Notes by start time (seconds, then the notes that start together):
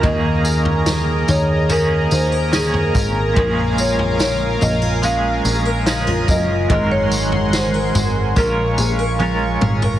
Already playing: C#4 F4 A#4 G#5 A#5
0.01 D#2 D#3 A#3 D#5, kick, floor tom
0.06 C#4 G#4
0.45 G#4, tambourine
0.65 floor tom
0.86 A#4, snare, tambourine
1.28 D#2 G#4 C#5, floor tom, tambourine
1.69 D#3 A#3 C#4 G#4 A#4, floor tom, tambourine
2.11 D#2 G#4 C5, tambourine
2.32 A#4
2.52 D#3 A#3 C#4 G#4, snare, tambourine
2.74 floor tom
2.95 G#1 A#4, kick, tambourine
3.34 A#1 A#2 F3 G#3 F5 G#5, kick, floor tom
3.38 C#4 G#4 A#4
3.78 F4 C#5, tambourine
3.99 floor tom
4.19 A#4 C#5, snare, tambourine
4.61 A#1 D#4 D#5, floor tom, tambourine
4.82 F4
5.02 F3 G#3 C#4 G#4 F5, tambourine
5.45 A#1 G#4, tambourine
5.65 A#4
5.86 F3 G#3 C#4 D#4 G#4, snare, tambourine
6.07 F4, floor tom
6.28 F#1 A#4 D#5, kick, tambourine
6.69 G#1 G#2 D#3 F#3 G#3 D#5 F#5 C6, kick, floor tom
6.74 A#4
6.92 C#5
7.11 F#4, tambourine
7.32 floor tom
7.53 G#4 C5, snare, tambourine
7.74 A#4
7.95 G#1 F#4, floor tom, tambourine
8.36 A#1 A#2 G#3 C#4 F4 A#4 F5 C#6, kick, tambourine
8.78 A#1 G#4, tambourine
8.99 A#4
9.19 G#3 C#4 F4 A#4, high tom
9.61 G#1 G#4, mid tom
9.82 A#4, floor tom